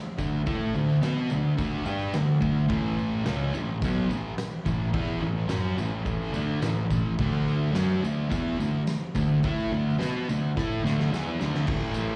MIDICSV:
0, 0, Header, 1, 4, 480
1, 0, Start_track
1, 0, Tempo, 560748
1, 398, Time_signature, 4, 2, 24, 8
1, 10406, End_track
2, 0, Start_track
2, 0, Title_t, "Distorted electric guitar"
2, 0, Program_c, 0, 30
2, 156, Note_on_c, 0, 50, 67
2, 156, Note_on_c, 0, 57, 76
2, 349, Note_off_c, 0, 50, 0
2, 349, Note_off_c, 0, 57, 0
2, 395, Note_on_c, 0, 57, 88
2, 402, Note_on_c, 0, 69, 95
2, 405, Note_on_c, 0, 64, 86
2, 629, Note_off_c, 0, 57, 0
2, 633, Note_off_c, 0, 69, 0
2, 634, Note_off_c, 0, 64, 0
2, 645, Note_on_c, 0, 50, 66
2, 646, Note_on_c, 0, 57, 67
2, 833, Note_off_c, 0, 50, 0
2, 834, Note_off_c, 0, 57, 0
2, 871, Note_on_c, 0, 59, 95
2, 883, Note_on_c, 0, 66, 91
2, 892, Note_on_c, 0, 71, 105
2, 1107, Note_off_c, 0, 59, 0
2, 1113, Note_off_c, 0, 66, 0
2, 1118, Note_off_c, 0, 71, 0
2, 1120, Note_on_c, 0, 50, 67
2, 1125, Note_on_c, 0, 57, 83
2, 1311, Note_off_c, 0, 50, 0
2, 1314, Note_off_c, 0, 57, 0
2, 1349, Note_on_c, 0, 50, 83
2, 1363, Note_on_c, 0, 57, 90
2, 1366, Note_on_c, 0, 62, 97
2, 1579, Note_off_c, 0, 62, 0
2, 1580, Note_off_c, 0, 57, 0
2, 1584, Note_on_c, 0, 55, 97
2, 1586, Note_off_c, 0, 50, 0
2, 1589, Note_on_c, 0, 62, 90
2, 1592, Note_on_c, 0, 67, 93
2, 1823, Note_off_c, 0, 55, 0
2, 1826, Note_off_c, 0, 62, 0
2, 1826, Note_on_c, 0, 50, 64
2, 1827, Note_off_c, 0, 67, 0
2, 1828, Note_on_c, 0, 57, 59
2, 2024, Note_off_c, 0, 50, 0
2, 2025, Note_off_c, 0, 57, 0
2, 2061, Note_on_c, 0, 57, 69
2, 2062, Note_on_c, 0, 50, 72
2, 2261, Note_off_c, 0, 57, 0
2, 2262, Note_off_c, 0, 50, 0
2, 2298, Note_on_c, 0, 45, 84
2, 2306, Note_on_c, 0, 52, 94
2, 2310, Note_on_c, 0, 57, 103
2, 2777, Note_off_c, 0, 45, 0
2, 2780, Note_on_c, 0, 49, 93
2, 2785, Note_off_c, 0, 52, 0
2, 2787, Note_off_c, 0, 57, 0
2, 2794, Note_on_c, 0, 56, 94
2, 2798, Note_on_c, 0, 61, 102
2, 3022, Note_off_c, 0, 49, 0
2, 3029, Note_off_c, 0, 56, 0
2, 3031, Note_off_c, 0, 61, 0
2, 3035, Note_on_c, 0, 45, 62
2, 3035, Note_on_c, 0, 52, 70
2, 3228, Note_off_c, 0, 45, 0
2, 3228, Note_off_c, 0, 52, 0
2, 3282, Note_on_c, 0, 47, 76
2, 3288, Note_on_c, 0, 54, 90
2, 3289, Note_on_c, 0, 59, 92
2, 3508, Note_off_c, 0, 54, 0
2, 3512, Note_on_c, 0, 52, 80
2, 3513, Note_off_c, 0, 47, 0
2, 3516, Note_off_c, 0, 59, 0
2, 3516, Note_on_c, 0, 45, 71
2, 3707, Note_off_c, 0, 52, 0
2, 3709, Note_off_c, 0, 45, 0
2, 3983, Note_on_c, 0, 52, 73
2, 3985, Note_on_c, 0, 45, 66
2, 4182, Note_off_c, 0, 52, 0
2, 4183, Note_off_c, 0, 45, 0
2, 4220, Note_on_c, 0, 52, 77
2, 4221, Note_on_c, 0, 59, 81
2, 4222, Note_on_c, 0, 64, 106
2, 4448, Note_off_c, 0, 52, 0
2, 4454, Note_on_c, 0, 45, 66
2, 4455, Note_off_c, 0, 59, 0
2, 4458, Note_on_c, 0, 52, 71
2, 4463, Note_off_c, 0, 64, 0
2, 4658, Note_off_c, 0, 45, 0
2, 4660, Note_off_c, 0, 52, 0
2, 4688, Note_on_c, 0, 54, 87
2, 4690, Note_on_c, 0, 61, 101
2, 4703, Note_on_c, 0, 66, 105
2, 4936, Note_off_c, 0, 54, 0
2, 4937, Note_off_c, 0, 61, 0
2, 4943, Note_off_c, 0, 66, 0
2, 4946, Note_on_c, 0, 45, 68
2, 4951, Note_on_c, 0, 52, 66
2, 5144, Note_off_c, 0, 45, 0
2, 5147, Note_off_c, 0, 52, 0
2, 5177, Note_on_c, 0, 45, 90
2, 5180, Note_on_c, 0, 52, 86
2, 5184, Note_on_c, 0, 57, 103
2, 5414, Note_off_c, 0, 57, 0
2, 5417, Note_off_c, 0, 45, 0
2, 5421, Note_off_c, 0, 52, 0
2, 5421, Note_on_c, 0, 50, 97
2, 5424, Note_on_c, 0, 57, 100
2, 5439, Note_on_c, 0, 62, 109
2, 5657, Note_off_c, 0, 50, 0
2, 5660, Note_on_c, 0, 45, 70
2, 5664, Note_off_c, 0, 57, 0
2, 5670, Note_on_c, 0, 52, 73
2, 5672, Note_off_c, 0, 62, 0
2, 5861, Note_off_c, 0, 45, 0
2, 5867, Note_off_c, 0, 52, 0
2, 5915, Note_on_c, 0, 52, 76
2, 5916, Note_on_c, 0, 45, 68
2, 6109, Note_off_c, 0, 45, 0
2, 6109, Note_off_c, 0, 52, 0
2, 6155, Note_on_c, 0, 50, 82
2, 6161, Note_on_c, 0, 57, 102
2, 6170, Note_on_c, 0, 62, 97
2, 6620, Note_off_c, 0, 50, 0
2, 6623, Note_on_c, 0, 54, 95
2, 6624, Note_off_c, 0, 57, 0
2, 6627, Note_off_c, 0, 62, 0
2, 6628, Note_on_c, 0, 61, 89
2, 6630, Note_on_c, 0, 66, 112
2, 6864, Note_off_c, 0, 54, 0
2, 6866, Note_off_c, 0, 61, 0
2, 6868, Note_off_c, 0, 66, 0
2, 6870, Note_on_c, 0, 50, 70
2, 6876, Note_on_c, 0, 57, 77
2, 7067, Note_off_c, 0, 50, 0
2, 7070, Note_off_c, 0, 57, 0
2, 7102, Note_on_c, 0, 52, 89
2, 7111, Note_on_c, 0, 59, 95
2, 7114, Note_on_c, 0, 64, 104
2, 7344, Note_off_c, 0, 52, 0
2, 7348, Note_off_c, 0, 59, 0
2, 7350, Note_off_c, 0, 64, 0
2, 7357, Note_on_c, 0, 57, 69
2, 7358, Note_on_c, 0, 50, 68
2, 7550, Note_off_c, 0, 57, 0
2, 7551, Note_off_c, 0, 50, 0
2, 7830, Note_on_c, 0, 50, 69
2, 7831, Note_on_c, 0, 57, 79
2, 8027, Note_off_c, 0, 50, 0
2, 8027, Note_off_c, 0, 57, 0
2, 8081, Note_on_c, 0, 57, 93
2, 8088, Note_on_c, 0, 64, 88
2, 8088, Note_on_c, 0, 69, 100
2, 8311, Note_off_c, 0, 57, 0
2, 8316, Note_off_c, 0, 69, 0
2, 8316, Note_on_c, 0, 50, 60
2, 8317, Note_off_c, 0, 64, 0
2, 8321, Note_on_c, 0, 57, 83
2, 8510, Note_off_c, 0, 50, 0
2, 8512, Note_off_c, 0, 57, 0
2, 8547, Note_on_c, 0, 59, 93
2, 8549, Note_on_c, 0, 66, 98
2, 8553, Note_on_c, 0, 71, 90
2, 8786, Note_off_c, 0, 59, 0
2, 8787, Note_off_c, 0, 66, 0
2, 8789, Note_off_c, 0, 71, 0
2, 8800, Note_on_c, 0, 50, 69
2, 8805, Note_on_c, 0, 57, 66
2, 8991, Note_off_c, 0, 50, 0
2, 8994, Note_off_c, 0, 57, 0
2, 9046, Note_on_c, 0, 57, 89
2, 9046, Note_on_c, 0, 64, 85
2, 9049, Note_on_c, 0, 69, 99
2, 9270, Note_off_c, 0, 57, 0
2, 9271, Note_on_c, 0, 50, 94
2, 9275, Note_off_c, 0, 64, 0
2, 9276, Note_off_c, 0, 69, 0
2, 9280, Note_on_c, 0, 57, 98
2, 9289, Note_on_c, 0, 62, 110
2, 9507, Note_off_c, 0, 50, 0
2, 9512, Note_off_c, 0, 57, 0
2, 9515, Note_on_c, 0, 52, 82
2, 9516, Note_off_c, 0, 62, 0
2, 9524, Note_on_c, 0, 59, 95
2, 9527, Note_on_c, 0, 64, 95
2, 9749, Note_off_c, 0, 52, 0
2, 9753, Note_off_c, 0, 59, 0
2, 9755, Note_off_c, 0, 64, 0
2, 9757, Note_on_c, 0, 50, 105
2, 9762, Note_on_c, 0, 57, 103
2, 9770, Note_on_c, 0, 62, 105
2, 9982, Note_off_c, 0, 50, 0
2, 9986, Note_on_c, 0, 45, 82
2, 9987, Note_off_c, 0, 57, 0
2, 9993, Note_off_c, 0, 62, 0
2, 9993, Note_on_c, 0, 52, 98
2, 9997, Note_on_c, 0, 57, 109
2, 10406, Note_off_c, 0, 45, 0
2, 10406, Note_off_c, 0, 52, 0
2, 10406, Note_off_c, 0, 57, 0
2, 10406, End_track
3, 0, Start_track
3, 0, Title_t, "Picked electric bass"
3, 0, Program_c, 1, 34
3, 152, Note_on_c, 1, 38, 80
3, 378, Note_off_c, 1, 38, 0
3, 397, Note_on_c, 1, 45, 90
3, 621, Note_off_c, 1, 45, 0
3, 635, Note_on_c, 1, 38, 76
3, 860, Note_off_c, 1, 38, 0
3, 882, Note_on_c, 1, 47, 99
3, 1103, Note_off_c, 1, 47, 0
3, 1140, Note_on_c, 1, 38, 85
3, 1349, Note_off_c, 1, 38, 0
3, 1354, Note_on_c, 1, 38, 91
3, 1579, Note_off_c, 1, 38, 0
3, 1600, Note_on_c, 1, 43, 92
3, 1822, Note_off_c, 1, 43, 0
3, 1841, Note_on_c, 1, 38, 79
3, 2063, Note_off_c, 1, 38, 0
3, 2074, Note_on_c, 1, 38, 77
3, 2299, Note_off_c, 1, 38, 0
3, 2312, Note_on_c, 1, 33, 87
3, 2761, Note_off_c, 1, 33, 0
3, 2801, Note_on_c, 1, 37, 96
3, 3022, Note_off_c, 1, 37, 0
3, 3031, Note_on_c, 1, 33, 74
3, 3258, Note_off_c, 1, 33, 0
3, 3268, Note_on_c, 1, 35, 91
3, 3495, Note_off_c, 1, 35, 0
3, 3529, Note_on_c, 1, 33, 79
3, 3747, Note_off_c, 1, 33, 0
3, 3992, Note_on_c, 1, 33, 84
3, 4218, Note_off_c, 1, 33, 0
3, 4227, Note_on_c, 1, 40, 94
3, 4456, Note_off_c, 1, 40, 0
3, 4471, Note_on_c, 1, 33, 74
3, 4698, Note_off_c, 1, 33, 0
3, 4707, Note_on_c, 1, 42, 102
3, 4936, Note_off_c, 1, 42, 0
3, 4941, Note_on_c, 1, 33, 75
3, 5172, Note_off_c, 1, 33, 0
3, 5190, Note_on_c, 1, 33, 98
3, 5417, Note_off_c, 1, 33, 0
3, 5427, Note_on_c, 1, 38, 89
3, 5656, Note_off_c, 1, 38, 0
3, 5662, Note_on_c, 1, 33, 78
3, 5893, Note_off_c, 1, 33, 0
3, 5914, Note_on_c, 1, 33, 81
3, 6140, Note_off_c, 1, 33, 0
3, 6155, Note_on_c, 1, 38, 93
3, 6604, Note_off_c, 1, 38, 0
3, 6611, Note_on_c, 1, 42, 96
3, 6847, Note_off_c, 1, 42, 0
3, 6861, Note_on_c, 1, 38, 81
3, 7093, Note_off_c, 1, 38, 0
3, 7120, Note_on_c, 1, 40, 98
3, 7343, Note_off_c, 1, 40, 0
3, 7350, Note_on_c, 1, 38, 71
3, 7578, Note_off_c, 1, 38, 0
3, 7844, Note_on_c, 1, 38, 83
3, 8065, Note_off_c, 1, 38, 0
3, 8076, Note_on_c, 1, 45, 85
3, 8301, Note_off_c, 1, 45, 0
3, 8323, Note_on_c, 1, 38, 76
3, 8539, Note_off_c, 1, 38, 0
3, 8545, Note_on_c, 1, 47, 99
3, 8774, Note_off_c, 1, 47, 0
3, 8818, Note_on_c, 1, 38, 75
3, 9032, Note_off_c, 1, 38, 0
3, 9042, Note_on_c, 1, 45, 86
3, 9263, Note_off_c, 1, 45, 0
3, 9286, Note_on_c, 1, 38, 87
3, 9505, Note_off_c, 1, 38, 0
3, 9521, Note_on_c, 1, 40, 93
3, 9742, Note_off_c, 1, 40, 0
3, 9766, Note_on_c, 1, 38, 92
3, 9984, Note_off_c, 1, 38, 0
3, 10000, Note_on_c, 1, 33, 91
3, 10175, Note_off_c, 1, 33, 0
3, 10248, Note_on_c, 1, 33, 94
3, 10406, Note_off_c, 1, 33, 0
3, 10406, End_track
4, 0, Start_track
4, 0, Title_t, "Drums"
4, 158, Note_on_c, 9, 36, 84
4, 163, Note_on_c, 9, 54, 68
4, 244, Note_off_c, 9, 36, 0
4, 249, Note_off_c, 9, 54, 0
4, 401, Note_on_c, 9, 36, 126
4, 401, Note_on_c, 9, 46, 58
4, 401, Note_on_c, 9, 54, 27
4, 486, Note_off_c, 9, 46, 0
4, 486, Note_off_c, 9, 54, 0
4, 487, Note_off_c, 9, 36, 0
4, 640, Note_on_c, 9, 54, 27
4, 725, Note_off_c, 9, 54, 0
4, 762, Note_on_c, 9, 54, 26
4, 847, Note_off_c, 9, 54, 0
4, 878, Note_on_c, 9, 54, 90
4, 880, Note_on_c, 9, 46, 54
4, 882, Note_on_c, 9, 38, 100
4, 964, Note_off_c, 9, 54, 0
4, 965, Note_off_c, 9, 46, 0
4, 968, Note_off_c, 9, 38, 0
4, 1110, Note_on_c, 9, 54, 75
4, 1196, Note_off_c, 9, 54, 0
4, 1354, Note_on_c, 9, 54, 67
4, 1356, Note_on_c, 9, 46, 61
4, 1357, Note_on_c, 9, 36, 110
4, 1440, Note_off_c, 9, 54, 0
4, 1441, Note_off_c, 9, 46, 0
4, 1442, Note_off_c, 9, 36, 0
4, 1466, Note_on_c, 9, 54, 25
4, 1551, Note_off_c, 9, 54, 0
4, 1588, Note_on_c, 9, 54, 70
4, 1673, Note_off_c, 9, 54, 0
4, 1701, Note_on_c, 9, 54, 25
4, 1786, Note_off_c, 9, 54, 0
4, 1827, Note_on_c, 9, 54, 92
4, 1829, Note_on_c, 9, 46, 61
4, 1831, Note_on_c, 9, 38, 108
4, 1913, Note_off_c, 9, 54, 0
4, 1914, Note_off_c, 9, 46, 0
4, 1917, Note_off_c, 9, 38, 0
4, 2072, Note_on_c, 9, 36, 88
4, 2158, Note_off_c, 9, 36, 0
4, 2296, Note_on_c, 9, 46, 54
4, 2310, Note_on_c, 9, 36, 112
4, 2382, Note_off_c, 9, 46, 0
4, 2396, Note_off_c, 9, 36, 0
4, 2554, Note_on_c, 9, 54, 29
4, 2639, Note_off_c, 9, 54, 0
4, 2787, Note_on_c, 9, 46, 50
4, 2790, Note_on_c, 9, 38, 98
4, 2790, Note_on_c, 9, 54, 90
4, 2873, Note_off_c, 9, 46, 0
4, 2875, Note_off_c, 9, 38, 0
4, 2876, Note_off_c, 9, 54, 0
4, 3033, Note_on_c, 9, 54, 68
4, 3119, Note_off_c, 9, 54, 0
4, 3267, Note_on_c, 9, 46, 56
4, 3272, Note_on_c, 9, 36, 119
4, 3284, Note_on_c, 9, 54, 71
4, 3352, Note_off_c, 9, 46, 0
4, 3357, Note_off_c, 9, 36, 0
4, 3370, Note_off_c, 9, 54, 0
4, 3516, Note_on_c, 9, 54, 68
4, 3602, Note_off_c, 9, 54, 0
4, 3749, Note_on_c, 9, 46, 62
4, 3751, Note_on_c, 9, 38, 115
4, 3754, Note_on_c, 9, 54, 91
4, 3834, Note_off_c, 9, 46, 0
4, 3837, Note_off_c, 9, 38, 0
4, 3840, Note_off_c, 9, 54, 0
4, 3990, Note_on_c, 9, 36, 83
4, 3997, Note_on_c, 9, 54, 63
4, 4076, Note_off_c, 9, 36, 0
4, 4083, Note_off_c, 9, 54, 0
4, 4227, Note_on_c, 9, 46, 62
4, 4228, Note_on_c, 9, 36, 121
4, 4313, Note_off_c, 9, 46, 0
4, 4314, Note_off_c, 9, 36, 0
4, 4459, Note_on_c, 9, 54, 27
4, 4545, Note_off_c, 9, 54, 0
4, 4698, Note_on_c, 9, 46, 54
4, 4700, Note_on_c, 9, 38, 101
4, 4704, Note_on_c, 9, 54, 103
4, 4783, Note_off_c, 9, 46, 0
4, 4786, Note_off_c, 9, 38, 0
4, 4790, Note_off_c, 9, 54, 0
4, 4949, Note_on_c, 9, 54, 78
4, 5035, Note_off_c, 9, 54, 0
4, 5179, Note_on_c, 9, 46, 59
4, 5187, Note_on_c, 9, 36, 111
4, 5193, Note_on_c, 9, 54, 86
4, 5264, Note_off_c, 9, 46, 0
4, 5273, Note_off_c, 9, 36, 0
4, 5279, Note_off_c, 9, 54, 0
4, 5424, Note_on_c, 9, 54, 85
4, 5510, Note_off_c, 9, 54, 0
4, 5668, Note_on_c, 9, 54, 117
4, 5669, Note_on_c, 9, 46, 57
4, 5671, Note_on_c, 9, 38, 108
4, 5753, Note_off_c, 9, 54, 0
4, 5754, Note_off_c, 9, 46, 0
4, 5757, Note_off_c, 9, 38, 0
4, 5910, Note_on_c, 9, 36, 87
4, 5910, Note_on_c, 9, 54, 85
4, 5996, Note_off_c, 9, 36, 0
4, 5996, Note_off_c, 9, 54, 0
4, 6152, Note_on_c, 9, 36, 125
4, 6153, Note_on_c, 9, 46, 63
4, 6238, Note_off_c, 9, 36, 0
4, 6238, Note_off_c, 9, 46, 0
4, 6402, Note_on_c, 9, 54, 36
4, 6487, Note_off_c, 9, 54, 0
4, 6633, Note_on_c, 9, 46, 48
4, 6636, Note_on_c, 9, 38, 106
4, 6641, Note_on_c, 9, 54, 120
4, 6719, Note_off_c, 9, 46, 0
4, 6721, Note_off_c, 9, 38, 0
4, 6726, Note_off_c, 9, 54, 0
4, 6885, Note_on_c, 9, 54, 88
4, 6970, Note_off_c, 9, 54, 0
4, 7114, Note_on_c, 9, 46, 57
4, 7119, Note_on_c, 9, 36, 103
4, 7121, Note_on_c, 9, 54, 84
4, 7199, Note_off_c, 9, 46, 0
4, 7204, Note_off_c, 9, 36, 0
4, 7207, Note_off_c, 9, 54, 0
4, 7365, Note_on_c, 9, 54, 87
4, 7450, Note_off_c, 9, 54, 0
4, 7594, Note_on_c, 9, 54, 105
4, 7595, Note_on_c, 9, 46, 58
4, 7598, Note_on_c, 9, 38, 110
4, 7680, Note_off_c, 9, 54, 0
4, 7681, Note_off_c, 9, 46, 0
4, 7684, Note_off_c, 9, 38, 0
4, 7830, Note_on_c, 9, 54, 75
4, 7841, Note_on_c, 9, 36, 89
4, 7915, Note_off_c, 9, 54, 0
4, 7926, Note_off_c, 9, 36, 0
4, 8069, Note_on_c, 9, 46, 59
4, 8073, Note_on_c, 9, 54, 27
4, 8081, Note_on_c, 9, 36, 122
4, 8154, Note_off_c, 9, 46, 0
4, 8159, Note_off_c, 9, 54, 0
4, 8166, Note_off_c, 9, 36, 0
4, 8213, Note_on_c, 9, 54, 29
4, 8299, Note_off_c, 9, 54, 0
4, 8335, Note_on_c, 9, 54, 30
4, 8421, Note_off_c, 9, 54, 0
4, 8474, Note_on_c, 9, 54, 29
4, 8560, Note_off_c, 9, 54, 0
4, 8563, Note_on_c, 9, 46, 61
4, 8566, Note_on_c, 9, 38, 97
4, 8581, Note_on_c, 9, 54, 101
4, 8649, Note_off_c, 9, 46, 0
4, 8651, Note_off_c, 9, 38, 0
4, 8666, Note_off_c, 9, 54, 0
4, 8811, Note_on_c, 9, 54, 80
4, 8897, Note_off_c, 9, 54, 0
4, 9049, Note_on_c, 9, 36, 108
4, 9052, Note_on_c, 9, 38, 59
4, 9069, Note_on_c, 9, 54, 68
4, 9135, Note_off_c, 9, 36, 0
4, 9137, Note_off_c, 9, 38, 0
4, 9154, Note_off_c, 9, 54, 0
4, 9178, Note_on_c, 9, 54, 24
4, 9264, Note_off_c, 9, 54, 0
4, 9297, Note_on_c, 9, 38, 74
4, 9301, Note_on_c, 9, 54, 75
4, 9382, Note_off_c, 9, 38, 0
4, 9387, Note_off_c, 9, 54, 0
4, 9416, Note_on_c, 9, 38, 66
4, 9502, Note_off_c, 9, 38, 0
4, 9533, Note_on_c, 9, 54, 102
4, 9539, Note_on_c, 9, 38, 89
4, 9619, Note_off_c, 9, 54, 0
4, 9625, Note_off_c, 9, 38, 0
4, 9654, Note_on_c, 9, 54, 27
4, 9740, Note_off_c, 9, 54, 0
4, 9764, Note_on_c, 9, 38, 93
4, 9766, Note_on_c, 9, 54, 66
4, 9850, Note_off_c, 9, 38, 0
4, 9851, Note_off_c, 9, 54, 0
4, 9885, Note_on_c, 9, 54, 25
4, 9887, Note_on_c, 9, 38, 83
4, 9971, Note_off_c, 9, 54, 0
4, 9972, Note_off_c, 9, 38, 0
4, 9989, Note_on_c, 9, 49, 124
4, 9989, Note_on_c, 9, 57, 69
4, 9999, Note_on_c, 9, 36, 127
4, 10075, Note_off_c, 9, 49, 0
4, 10075, Note_off_c, 9, 57, 0
4, 10085, Note_off_c, 9, 36, 0
4, 10222, Note_on_c, 9, 54, 97
4, 10307, Note_off_c, 9, 54, 0
4, 10406, End_track
0, 0, End_of_file